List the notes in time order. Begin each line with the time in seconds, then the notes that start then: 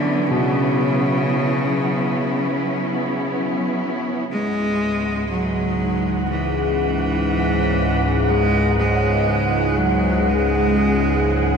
Already playing: D3 F#3 B3 C#4 E4
0.27 B2 C#3
4.28 C#2 G#2 C#3 G#3 F#5
5.31 F#3
6.30 E3
8.29 G#3
8.79 G#3 G#4
9.78 F#3
10.28 G#3